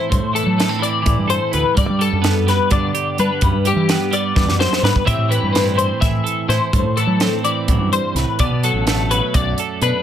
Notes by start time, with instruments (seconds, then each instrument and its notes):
Already playing: clean electric guitar C5
0.10 fingered electric bass G2, clean electric guitar A2, kick, closed hi-hat
0.23 fingered electric bass A2
0.33 clean electric guitar E3 A4, closed hi-hat
0.46 fingered electric bass F#3
0.58 clean electric guitar A3, snare, closed hi-hat
0.69 clean electric guitar C4
0.79 clean electric guitar E3 D5
0.83 closed hi-hat
1.02 fingered electric bass A2, clean electric guitar E3, closed hi-hat
1.06 kick
1.18 fingered electric bass G2
1.28 clean electric guitar A4 C5, closed hi-hat
1.52 fingered electric bass D2, clean electric guitar E4 B4, closed hi-hat
1.75 clean electric guitar G2 D5, fingered electric bass G2, kick, closed hi-hat
1.90 fingered electric bass G3
1.99 clean electric guitar G3 A4, closed hi-hat
2.13 fingered electric bass F#2
2.22 clean electric guitar B3, snare, closed hi-hat
2.47 clean electric guitar G3 B4, snare, closed hi-hat
2.71 fingered electric bass G2, clean electric guitar D3 D5, kick, closed hi-hat
2.95 clean electric guitar G4, closed hi-hat
3.18 fingered electric bass G3, clean electric guitar D4 B4, closed hi-hat
3.41 fingered electric bass F#2, clean electric guitar G2, kick, closed hi-hat
3.53 fingered electric bass G2
3.65 clean electric guitar G3 G4, closed hi-hat
3.76 fingered electric bass E3
3.89 clean electric guitar B3, snare, closed hi-hat
4.11 clean electric guitar G3 D5, closed hi-hat
4.35 clean electric guitar E2, fingered electric bass G2, kick, snare
4.47 fingered electric bass F#2, snare
4.59 clean electric guitar F#2 C5, snare
4.73 snare
4.82 clean electric guitar G2 B4, fingered electric bass G#2, snare
4.96 kick
5.05 clean electric guitar A2 E3 C4 E4 G4 E5, fingered electric bass A2, kick, closed hi-hat
5.18 fingered electric bass A2
5.29 clean electric guitar E3 B4, closed hi-hat
5.43 fingered electric bass G2
5.53 clean electric guitar C4, snare, closed hi-hat
5.75 clean electric guitar E3 C5, closed hi-hat
6.00 fingered electric bass A2, clean electric guitar E3 E5, kick, snare, closed hi-hat
6.24 clean electric guitar A4, closed hi-hat
6.49 fingered electric bass A2, clean electric guitar E4 C5, snare, closed hi-hat
6.73 fingered electric bass G2, clean electric guitar A2, kick, closed hi-hat
6.84 fingered electric bass A2
6.97 clean electric guitar E3 A4, closed hi-hat
7.07 fingered electric bass F#3
7.20 clean electric guitar C4, snare, closed hi-hat
7.44 clean electric guitar E3 D5, closed hi-hat
7.68 clean electric guitar F#2, fingered electric bass A2, kick, closed hi-hat
7.79 fingered electric bass G2
7.92 clean electric guitar G2 C5, closed hi-hat
8.15 fingered electric bass C2, clean electric guitar A2 B4, snare, closed hi-hat
8.39 fingered electric bass B1, clean electric guitar B2 D5, kick, closed hi-hat
8.51 fingered electric bass B2
8.63 clean electric guitar F#3 A4, closed hi-hat
8.73 fingered electric bass A1
8.87 clean electric guitar A3, snare, closed hi-hat
9.10 clean electric guitar F#3 B4, closed hi-hat
9.34 fingered electric bass B1, clean electric guitar F#2 D5, kick, closed hi-hat
9.58 clean electric guitar A4, closed hi-hat
9.81 fingered electric bass B2, clean electric guitar D4 B4, closed hi-hat